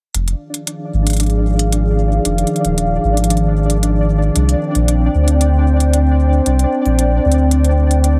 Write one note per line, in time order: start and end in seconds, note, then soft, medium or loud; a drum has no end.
0.15 0.34 F1 loud
0.15 4.32 D#3 medium
0.15 4.32 F3 medium
0.15 8.20 D4 medium
0.15 4.32 G#4 medium
0.15 8.20 D5 medium
0.15 4.32 F5 medium
0.15 closed hi-hat medium
0.28 closed hi-hat soft
0.54 closed hi-hat soft
0.67 closed hi-hat medium
0.94 2.19 G#1 medium
1.07 closed hi-hat soft
1.10 closed hi-hat soft
1.13 closed hi-hat soft
1.17 closed hi-hat soft
1.20 closed hi-hat medium
1.23 closed hi-hat soft
1.26 closed hi-hat soft
1.30 closed hi-hat soft
1.59 closed hi-hat soft
1.72 closed hi-hat medium
2.25 2.44 F1 medium
2.25 closed hi-hat medium
2.38 closed hi-hat soft
2.47 closed hi-hat soft
2.56 closed hi-hat soft
2.65 2.98 D#1 medium
2.65 closed hi-hat soft
2.78 closed hi-hat medium
3.04 4.30 G#1 medium
3.17 closed hi-hat soft
3.24 closed hi-hat soft
3.30 closed hi-hat medium
3.37 closed hi-hat soft
3.70 closed hi-hat medium
3.83 closed hi-hat medium
4.36 4.55 C2 loud
4.36 8.20 C4 medium
4.36 8.20 C5 medium
4.36 8.20 D5 medium
4.36 8.20 G5 medium
4.36 closed hi-hat medium
4.49 closed hi-hat soft
4.75 5.09 A#1 medium
4.75 closed hi-hat soft
4.88 closed hi-hat medium
5.15 6.40 D2 loud
5.28 closed hi-hat medium
5.41 closed hi-hat medium
5.80 closed hi-hat medium
5.93 closed hi-hat medium
6.46 6.65 C2 loud
6.46 closed hi-hat medium
6.59 closed hi-hat soft
6.86 7.19 A#1 loud
6.86 closed hi-hat soft
6.99 closed hi-hat medium
7.25 8.20 D2 medium
7.32 closed hi-hat soft
7.51 closed hi-hat medium
7.64 closed hi-hat soft
7.91 closed hi-hat soft
8.04 closed hi-hat medium